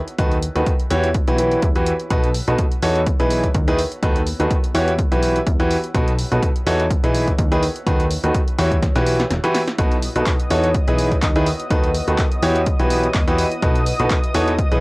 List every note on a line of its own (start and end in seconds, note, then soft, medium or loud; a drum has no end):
0.00 1.38 B3 medium
0.08 closed hi-hat soft
0.18 0.49 D#2 loud
0.18 0.35 D#3 medium
0.18 0.35 D#4 medium
0.18 0.35 F#4 medium
0.18 0.35 A4 medium
0.18 0.35 B4 medium
0.18 kick loud
0.18 closed hi-hat medium
0.32 closed hi-hat soft
0.43 closed hi-hat medium
0.56 0.63 D#2 medium
0.56 0.71 D#3 medium
0.56 0.71 D#4 medium
0.56 0.71 F#4 medium
0.56 0.71 A4 medium
0.56 0.71 B4 medium
0.56 closed hi-hat soft
0.67 kick loud
0.67 closed hi-hat medium
0.80 closed hi-hat soft
0.90 1.21 E2 loud
0.90 1.07 E3 medium
0.90 1.07 E4 medium
0.90 1.07 F#4 medium
0.90 1.07 G4 medium
0.90 1.07 C#5 loud
0.90 closed hi-hat medium
1.04 closed hi-hat soft
1.14 kick loud
1.14 closed hi-hat medium
1.28 1.57 B1 medium
1.28 1.36 E3 medium
1.28 1.36 E4 medium
1.28 1.36 F#4 medium
1.28 1.36 G4 medium
1.28 1.36 B4 medium
1.28 closed hi-hat soft
1.38 1.65 E3 medium
1.38 1.65 E4 medium
1.38 1.65 F#4 medium
1.38 1.65 G4 medium
1.38 1.65 B4 medium
1.38 closed hi-hat medium
1.51 closed hi-hat soft
1.62 1.93 E2 medium
1.62 kick loud
1.62 closed hi-hat medium
1.75 1.91 E3 medium
1.75 1.91 E4 medium
1.75 1.91 F#4 medium
1.75 1.91 G4 medium
1.75 1.91 B4 medium
1.75 closed hi-hat soft
1.86 closed hi-hat medium
2.00 closed hi-hat soft
2.10 2.41 B1 medium
2.10 2.27 B2 medium
2.10 3.36 B3 medium
2.10 2.27 D#4 medium
2.10 2.27 F#4 medium
2.10 2.27 A4 medium
2.10 2.27 B4 loud
2.10 kick loud
2.10 closed hi-hat medium
2.24 closed hi-hat soft
2.34 open hi-hat loud
2.48 2.55 B1 medium
2.48 2.63 B2 medium
2.48 2.63 D#4 medium
2.48 2.63 F#4 medium
2.48 2.63 A4 medium
2.48 2.63 B4 medium
2.48 closed hi-hat soft
2.58 kick loud
2.58 closed hi-hat medium
2.72 closed hi-hat soft
2.82 3.13 E2 loud
2.82 2.99 E3 medium
2.82 2.99 D#4 medium
2.82 2.99 F#4 medium
2.82 2.99 A4 medium
2.82 3.00 C#5 loud
2.82 open hi-hat loud
2.96 closed hi-hat soft
3.07 kick loud
3.07 closed hi-hat medium
3.20 3.49 B1 medium
3.20 3.45 E3 medium
3.20 3.45 D#4 medium
3.20 3.45 E4 medium
3.20 3.45 G#4 medium
3.20 3.45 B4 loud
3.20 closed hi-hat soft
3.31 open hi-hat loud
3.44 kick medium
3.44 closed hi-hat soft
3.55 3.85 D#2 medium
3.55 kick loud
3.55 closed hi-hat medium
3.68 3.77 D#3 medium
3.68 3.77 D#4 medium
3.68 3.77 E4 medium
3.68 3.77 G#4 medium
3.68 3.77 B4 loud
3.68 closed hi-hat soft
3.78 5.22 B3 medium
3.78 open hi-hat loud
3.87 5.22 F#4 medium
3.92 closed hi-hat soft
4.03 4.33 D#2 loud
4.03 4.19 D#3 medium
4.03 4.19 D#4 medium
4.03 4.20 F#4 medium
4.03 4.19 A4 medium
4.03 4.19 B4 loud
4.03 kick loud
4.03 closed hi-hat medium
4.16 closed hi-hat soft
4.27 open hi-hat medium
4.40 4.47 D#2 medium
4.40 4.55 D#3 medium
4.40 4.55 D#4 medium
4.40 4.55 F#4 medium
4.40 4.55 A4 medium
4.40 4.55 B4 medium
4.40 closed hi-hat soft
4.51 kick loud
4.51 closed hi-hat medium
4.64 closed hi-hat soft
4.74 5.05 E2 loud
4.74 4.92 E3 medium
4.74 4.92 E4 medium
4.74 4.92 F#4 medium
4.74 4.91 G4 medium
4.74 4.92 C#5 loud
4.74 open hi-hat loud
4.88 closed hi-hat soft
4.99 kick loud
4.99 closed hi-hat medium
5.06 6.34 B4 medium
5.06 6.34 F#5 medium
5.12 5.41 B1 medium
5.12 5.37 E3 medium
5.12 5.37 E4 medium
5.12 5.37 F#4 medium
5.12 5.37 G4 medium
5.12 5.37 B4 loud
5.12 closed hi-hat soft
5.23 open hi-hat loud
5.36 closed hi-hat soft
5.47 5.77 E2 medium
5.47 kick loud
5.47 closed hi-hat medium
5.60 5.75 E3 medium
5.60 5.75 E4 medium
5.60 5.75 F#4 medium
5.60 5.75 G4 medium
5.60 5.75 B4 loud
5.60 closed hi-hat soft
5.71 open hi-hat medium
5.84 closed hi-hat soft
5.95 6.25 B1 medium
5.95 6.11 B2 medium
5.95 7.20 B3 medium
5.95 6.11 D#4 medium
5.95 6.11 F#4 medium
5.95 6.11 A4 medium
5.95 6.11 B4 medium
5.95 kick loud
5.95 closed hi-hat medium
6.08 closed hi-hat soft
6.19 open hi-hat loud
6.32 6.39 B1 medium
6.32 6.47 B2 medium
6.32 6.47 D#4 medium
6.32 6.47 F#4 medium
6.32 6.47 A4 medium
6.32 6.47 B4 medium
6.32 closed hi-hat soft
6.43 kick loud
6.43 closed hi-hat medium
6.56 closed hi-hat soft
6.67 6.97 E2 loud
6.67 6.83 E3 loud
6.67 6.83 D#4 medium
6.67 6.83 F#4 medium
6.67 6.83 A4 medium
6.67 6.83 C#5 loud
6.67 open hi-hat medium
6.80 closed hi-hat soft
6.91 kick loud
6.91 closed hi-hat medium
7.04 7.33 B1 medium
7.04 7.29 E3 medium
7.04 7.29 D#4 medium
7.04 7.29 E4 medium
7.04 7.29 G#4 medium
7.04 7.29 B4 medium
7.04 closed hi-hat soft
7.15 open hi-hat medium
7.28 kick medium
7.28 closed hi-hat soft
7.39 7.69 D#2 medium
7.39 kick loud
7.39 closed hi-hat medium
7.52 7.61 D#3 medium
7.52 7.61 D#4 medium
7.52 7.61 E4 medium
7.52 7.61 G#4 medium
7.52 7.61 B4 loud
7.52 closed hi-hat soft
7.63 9.07 B3 medium
7.63 open hi-hat medium
7.76 closed hi-hat soft
7.87 8.17 D#2 medium
7.87 8.03 D#3 medium
7.87 8.03 D#4 medium
7.87 8.03 F#4 medium
7.87 8.03 A4 medium
7.87 8.03 B4 loud
7.87 kick loud
7.87 closed hi-hat medium
8.00 closed hi-hat soft
8.11 open hi-hat loud
8.24 8.31 D#2 medium
8.24 8.39 D#3 medium
8.24 8.39 D#4 medium
8.24 8.39 F#4 medium
8.24 8.39 A4 medium
8.24 8.39 B4 medium
8.24 closed hi-hat soft
8.34 kick loud
8.34 closed hi-hat medium
8.48 closed hi-hat soft
8.59 8.89 E2 loud
8.59 8.75 E3 medium
8.59 8.75 E4 medium
8.59 8.75 F#4 medium
8.59 8.75 G4 medium
8.59 8.75 C#5 loud
8.59 open hi-hat medium
8.72 kick medium
8.72 closed hi-hat soft
8.83 kick loud
8.83 snare medium
8.83 closed hi-hat medium
8.96 9.25 B1 medium
8.96 9.21 E3 medium
8.96 9.21 E4 medium
8.96 9.21 F#4 medium
8.96 9.21 G4 medium
8.96 9.21 B4 medium
8.96 snare medium
8.96 closed hi-hat soft
9.07 open hi-hat loud
9.20 snare medium
9.20 closed hi-hat soft
9.31 9.39 E1 medium
9.31 snare medium
9.31 closed hi-hat medium
9.44 9.59 E3 medium
9.44 9.59 E4 medium
9.44 9.59 F#4 medium
9.44 9.59 G4 medium
9.44 9.59 B4 loud
9.44 closed hi-hat soft
9.55 snare medium
9.55 open hi-hat medium
9.68 snare medium
9.68 closed hi-hat soft
9.79 10.09 B1 medium
9.79 9.95 B2 medium
9.79 11.04 B3 medium
9.79 9.95 D#4 medium
9.79 9.95 F#4 medium
9.79 9.95 A4 medium
9.79 9.95 B4 medium
9.79 14.80 D#5 medium
9.79 14.80 D#6 medium
9.79 kick loud
9.79 closed hi-hat medium
9.92 closed hi-hat soft
10.02 open hi-hat loud
10.16 10.23 B1 medium
10.16 10.31 B2 medium
10.16 10.31 D#4 medium
10.16 10.31 F#4 medium
10.16 10.31 A4 medium
10.16 10.31 B4 medium
10.16 closed hi-hat soft
10.27 kick loud
10.27 clap loud
10.27 closed hi-hat medium
10.40 closed hi-hat soft
10.50 10.81 E2 loud
10.50 10.67 E3 medium
10.50 10.67 D#4 medium
10.50 10.67 F#4 medium
10.50 10.67 A4 medium
10.50 10.67 C#5 loud
10.50 open hi-hat loud
10.64 closed hi-hat soft
10.75 kick loud
10.75 closed hi-hat medium
10.88 11.17 B1 medium
10.88 11.13 E3 medium
10.88 11.13 D#4 medium
10.88 11.13 E4 medium
10.88 11.13 G#4 medium
10.88 11.13 B4 medium
10.88 closed hi-hat soft
10.99 open hi-hat loud
11.12 kick medium
11.12 closed hi-hat soft
11.22 11.53 D#2 medium
11.22 kick loud
11.22 clap loud
11.22 closed hi-hat medium
11.36 11.45 D#3 medium
11.36 11.45 D#4 medium
11.36 11.45 E4 medium
11.36 11.45 G#4 medium
11.36 11.45 B4 loud
11.36 closed hi-hat soft
11.46 12.90 B3 medium
11.46 open hi-hat loud
11.60 closed hi-hat soft
11.71 12.01 D#2 loud
11.71 11.88 D#3 medium
11.71 11.87 D#4 medium
11.71 11.88 F#4 medium
11.71 11.88 A4 medium
11.71 11.87 B4 loud
11.71 kick loud
11.71 closed hi-hat medium
11.84 closed hi-hat soft
11.94 open hi-hat loud
12.07 12.15 D#2 medium
12.07 12.23 D#3 medium
12.07 12.23 D#4 medium
12.07 12.23 F#4 medium
12.07 12.23 A4 medium
12.07 12.23 B4 medium
12.07 closed hi-hat soft
12.18 kick loud
12.18 clap loud
12.18 closed hi-hat medium
12.32 closed hi-hat soft
12.42 12.73 E2 loud
12.42 12.59 E3 medium
12.42 12.59 E4 medium
12.42 12.59 F#4 medium
12.42 12.59 G4 medium
12.42 12.59 C#5 loud
12.42 open hi-hat loud
12.56 closed hi-hat soft
12.66 kick loud
12.66 closed hi-hat medium
12.79 13.09 B1 medium
12.79 13.05 E3 medium
12.79 13.05 E4 medium
12.79 13.05 F#4 medium
12.79 13.05 G4 medium
12.79 13.05 B4 loud
12.79 closed hi-hat soft
12.90 open hi-hat loud
13.04 closed hi-hat soft
13.14 13.45 E2 medium
13.14 kick loud
13.14 clap loud
13.14 closed hi-hat medium
13.27 13.43 E3 medium
13.27 13.43 E4 medium
13.27 13.43 F#4 medium
13.27 13.43 G4 medium
13.27 13.43 B4 loud
13.27 closed hi-hat soft
13.38 open hi-hat loud
13.52 closed hi-hat soft
13.62 13.93 B1 medium
13.62 13.79 B2 medium
13.62 14.80 B3 medium
13.62 13.79 D#4 medium
13.62 13.79 F#4 medium
13.62 13.79 A4 medium
13.62 13.79 B4 loud
13.62 kick loud
13.62 closed hi-hat medium
13.75 closed hi-hat soft
13.86 open hi-hat loud
13.99 14.07 B1 medium
13.99 14.15 B2 medium
13.99 14.15 D#4 medium
13.99 14.15 F#4 medium
13.99 14.15 A4 medium
13.99 14.15 B4 medium
13.99 closed hi-hat soft
14.10 kick loud
14.10 clap loud
14.10 closed hi-hat medium
14.24 closed hi-hat soft
14.34 14.65 E2 loud
14.34 14.51 E3 loud
14.34 14.51 D#4 medium
14.34 14.51 F#4 medium
14.34 14.51 A4 medium
14.34 14.51 C#5 loud
14.34 open hi-hat loud
14.48 closed hi-hat soft
14.58 kick loud
14.58 closed hi-hat medium
14.72 14.80 B1 medium
14.72 14.80 E3 medium
14.72 14.80 D#4 medium
14.72 14.80 E4 medium
14.72 14.80 G#4 medium
14.72 14.80 B4 loud
14.72 closed hi-hat soft